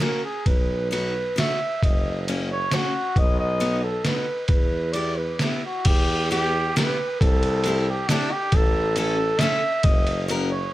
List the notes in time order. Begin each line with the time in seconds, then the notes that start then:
0.00 A#3 C#4 F#4 A#4
0.25 G#4
0.46 B1 B4, kick, ride
0.91 B3 D#4 F#4 B4, ride
1.36 B3 D#4 F#4 E5, snare, ride
1.83 F#1 D#5, kick, ride
2.28 A#3 C#4 F#4, ride
2.52 C#5
2.71 A#3 C#4 F#4, snare, ride
3.16 B1 D#5, kick, ride
3.39 D#5
3.60 B3 D#4 F#4, ride
3.83 A4
4.04 B3 D#4 F#4 B4, snare, ride
4.47 E2 B4, kick, ride
4.93 B3 E4 G4 D5, ride
5.18 B4
5.39 B3 E4 G4, snare, ride
5.66 F#4
5.85 E2 G4, kick, crash, ride
6.31 B3 E4 G4, ride
6.76 B3 E4 G4 B4, snare, ride
7.20 C2 A4, kick, ride
7.43 ride
7.64 C4 E4 G4, ride
7.90 G4
8.09 C4 D4 E4 G4, snare, ride
8.32 G4
8.52 A1 A4, kick, ride
8.96 C#4 E4 A4, ride
9.39 C#4 E4 A4 E5, snare, ride
9.83 F#1 D#5, kick, ride
10.07 ride
10.28 C#4 F#4 A#4, ride
10.51 C#5